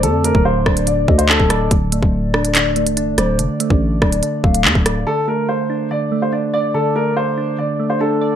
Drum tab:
HH |x-x----xx--x--x-|x-x----xx-xxx-x-|x-x----xx--x--x-|----------------|
CP |------------x---|--------x-------|------------x---|----------------|
SD |------r-------r-|------r-------r-|------r-------r-|----------------|
BD |---o--o---o--o--|o--o------------|---o--o---o--o--|----------------|

HH |----------------|
CP |----------------|
SD |----------------|
BD |----------------|